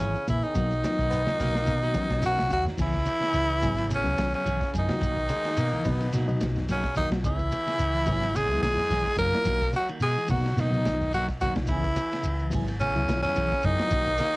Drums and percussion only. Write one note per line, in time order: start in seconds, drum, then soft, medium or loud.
0.00 closed hi-hat medium
0.15 closed hi-hat soft
0.15 shekere soft
0.27 kick medium
0.27 closed hi-hat medium
0.27 high conga medium
0.27 low conga medium
0.27 shekere medium
0.42 shekere soft
0.55 kick medium
0.55 closed hi-hat medium
0.55 shekere loud
0.71 closed hi-hat soft
0.71 shekere soft
0.84 snare medium
0.84 closed hi-hat medium
0.84 high conga medium
0.84 shekere medium
0.99 kick medium
0.99 snare soft
0.99 shekere soft
1.10 closed hi-hat medium
1.10 shekere medium
1.27 snare medium
1.27 high conga medium
1.27 shekere soft
1.39 snare soft
1.39 open hi-hat medium
1.39 high conga loud
1.39 low conga medium
1.39 shekere medium
1.55 snare medium
1.55 closed hi-hat soft
1.55 shekere soft
1.66 kick medium
1.66 closed hi-hat medium
1.66 high conga medium
1.66 shekere medium
1.81 closed hi-hat soft
1.81 shekere soft
1.94 kick medium
1.94 snare soft
1.94 closed hi-hat medium
1.94 high conga loud
1.94 shekere medium
2.09 kick medium
2.09 snare medium
2.09 shekere soft
2.22 closed hi-hat medium
2.22 high conga medium
2.22 shekere medium
2.37 snare medium
2.37 closed hi-hat soft
2.37 high conga medium
2.37 shekere soft
2.50 kick medium
2.50 snare soft
2.50 closed hi-hat medium
2.50 low conga medium
2.50 shekere medium
2.65 snare soft
2.65 low conga medium
2.65 shekere soft
2.78 kick medium
2.78 snare soft
2.78 crash medium
2.78 shekere medium
2.93 kick medium
2.93 snare soft
2.93 shekere soft
3.06 ride bell medium
3.06 high conga medium
3.06 shekere medium
3.22 snare soft
3.22 ride bell medium
3.22 shekere soft
3.33 ride bell medium
3.33 shekere medium
3.49 shekere soft
3.62 kick medium
3.62 open hi-hat medium
3.62 high conga loud
3.62 low conga medium
3.62 shekere medium
3.77 ride bell soft
3.77 shekere soft
3.90 ride bell medium
3.90 high conga medium
3.90 shekere medium
4.05 high conga medium
4.05 shekere soft
4.17 snare medium
4.17 ride bell soft
4.17 high conga loud
4.17 shekere medium
4.33 ride bell medium
4.33 shekere soft
4.46 ride bell medium
4.46 shekere medium
4.61 kick medium
4.61 snare soft
4.61 shekere soft
4.73 kick medium
4.73 ride bell medium
4.73 low conga medium
4.73 shekere medium
4.89 snare medium
4.89 ride bell medium
4.89 high conga medium
4.89 shekere soft
5.01 kick medium
5.01 ride bell medium
5.01 shekere medium
5.17 kick medium
5.17 shekere soft
5.29 ride bell medium
5.29 high conga medium
5.29 shekere medium
5.44 snare soft
5.44 ride bell medium
5.44 shekere soft
5.57 ride bell medium
5.57 shekere medium
5.72 high conga medium
5.72 shekere soft
5.84 kick medium
5.84 open hi-hat medium
5.84 high conga medium
5.84 low conga medium
5.84 shekere medium
6.01 ride bell medium
6.01 shekere soft
6.13 snare soft
6.13 ride bell medium
6.13 high conga medium
6.13 shekere loud
6.28 high conga medium
6.28 shekere soft
6.41 snare medium
6.41 ride bell medium
6.41 high conga medium
6.41 shekere medium
6.55 snare soft
6.55 low conga medium
6.55 shekere soft
6.69 snare soft
6.69 ride bell medium
6.69 shekere medium
6.83 kick medium
6.83 snare soft
6.83 shekere soft
6.96 kick medium
6.96 snare soft
6.96 ride bell medium
6.96 low conga medium
6.96 shekere medium
7.11 snare medium
7.11 ride bell medium
7.11 shekere soft
7.24 kick medium
7.24 ride bell medium
7.24 shekere medium
7.39 kick medium
7.39 shekere soft
7.51 ride bell medium
7.51 high conga medium
7.51 shekere medium
7.67 snare soft
7.67 ride bell medium
7.67 shekere soft
7.79 ride bell medium
7.79 shekere loud
7.94 shekere soft
8.06 kick medium
8.06 snare soft
8.06 open hi-hat medium
8.06 high conga medium
8.06 low conga medium
8.06 shekere medium
8.22 ride bell medium
8.22 shekere soft
8.35 ride bell medium
8.35 high conga medium
8.35 shekere loud
8.50 shekere soft
8.63 snare medium
8.63 ride bell medium
8.63 high conga loud
8.63 shekere medium
8.78 snare soft
8.78 ride bell medium
8.78 low conga medium
8.78 shekere soft
8.90 snare soft
8.90 ride bell medium
8.90 shekere medium
9.05 kick medium
9.05 snare soft
9.05 shekere soft
9.17 kick medium
9.17 ride bell soft
9.17 high conga medium
9.17 low conga medium
9.17 shekere medium
9.32 snare medium
9.32 ride bell medium
9.32 shekere soft
9.45 kick loud
9.45 ride bell medium
9.45 shekere loud
9.61 kick medium
9.61 snare soft
9.61 shekere soft
9.73 snare soft
9.73 ride bell soft
9.73 high conga medium
9.73 shekere medium
9.87 ride bell medium
9.87 shekere soft
10.00 ride bell medium
10.00 shekere medium
10.17 shekere soft
10.28 kick medium
10.28 open hi-hat medium
10.28 high conga loud
10.28 low conga medium
10.28 shekere medium
10.44 snare soft
10.44 ride bell medium
10.44 shekere soft
10.57 snare soft
10.57 ride bell medium
10.57 high conga medium
10.57 shekere medium
10.72 high conga medium
10.72 shekere soft
10.85 snare medium
10.85 ride bell medium
10.85 high conga medium
10.85 shekere medium
11.01 snare soft
11.01 low conga medium
11.01 shekere soft
11.13 ride bell medium
11.13 shekere medium
11.29 kick medium
11.29 snare soft
11.29 shekere soft
11.41 kick medium
11.41 ride bell medium
11.41 high conga medium
11.41 low conga medium
11.41 shekere medium
11.55 snare medium
11.55 ride bell medium
11.55 high conga medium
11.55 shekere soft
11.67 kick medium
11.67 ride bell medium
11.67 shekere medium
11.83 kick medium
11.83 shekere soft
11.96 ride bell medium
11.96 high conga medium
11.96 shekere medium
12.11 snare soft
12.11 ride bell medium
12.11 shekere soft
12.23 ride bell medium
12.23 shekere medium
12.39 shekere soft
12.51 kick medium
12.51 open hi-hat medium
12.51 high conga loud
12.51 low conga medium
12.51 shekere medium
12.67 ride bell medium
12.67 shekere soft
12.80 ride bell medium
12.80 high conga medium
12.80 shekere medium
12.95 high conga medium
12.95 shekere soft
13.08 snare medium
13.08 ride bell medium
13.08 high conga loud
13.08 shekere medium
13.22 snare soft
13.22 ride bell medium
13.22 low conga medium
13.22 shekere soft
13.35 ride bell medium
13.35 shekere medium
13.50 kick medium
13.50 snare soft
13.50 shekere soft
13.62 kick medium
13.62 ride bell medium
13.62 high conga medium
13.62 low conga medium
13.62 shekere medium
13.78 snare medium
13.78 ride bell medium
13.78 shekere soft
13.90 kick loud
13.90 ride bell medium
13.90 shekere medium
14.05 kick medium
14.05 shekere soft
14.17 snare soft
14.17 ride bell medium
14.17 high conga medium
14.17 shekere medium
14.33 shekere soft